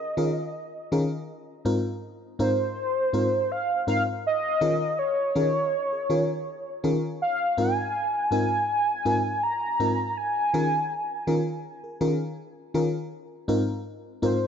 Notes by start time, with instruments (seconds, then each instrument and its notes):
Already playing: soft synth lead D#5
0.17 fm electric piano D#3 C#4 F4 G#4 A#4
0.92 fm electric piano D#3 C#4 F4 G#4 A#4
1.65 fm electric piano G#2 C4 D#4 F4 A#4
2.39 fm electric piano G#2 C4 D#4 F4 A#4, soft synth lead C5
3.13 fm electric piano G#2 C4 D#4 F4 A#4
3.52 soft synth lead F5
3.87 fm electric piano G#2 C4 D#4 F4 A#4, soft synth lead F5
4.27 soft synth lead D#5
4.61 fm electric piano D#3 C#4 F4 G#4 A#4
4.99 soft synth lead C#5
5.35 fm electric piano D#3 C#4 F4 G#4 A#4
5.93 fm electric piano G#4 A#4
6.10 fm electric piano D#3 C#4 F4 G#4 A#4
6.84 fm electric piano D#3 C#4 F4 G#4 A#4
7.22 soft synth lead F5
7.57 fm electric piano G#2 C4 D#4 F4 A#4, soft synth lead G#5
8.31 fm electric piano G#2 C4 D#4 F4 A#4, soft synth lead G#5
9.05 fm electric piano G#2 C4 D#4 F4 A#4
9.43 soft synth lead A#5
9.80 fm electric piano G#2 C4 D#4 F4 A#4
10.17 soft synth lead G#5
10.54 fm electric piano D#3 C#4 F4 G#4 A#4
11.27 fm electric piano D#3 C#4 F4 G#4 A#4
11.84 fm electric piano G#4 A#4
12.01 fm electric piano D#3 C#4 F4 G#4 A#4
12.74 fm electric piano D#3 C#4 F4 G#4 A#4
13.48 fm electric piano G#2 C4 D#4 F4 A#4
14.22 fm electric piano G#2 C4 D#4 F4 A#4, soft synth lead C5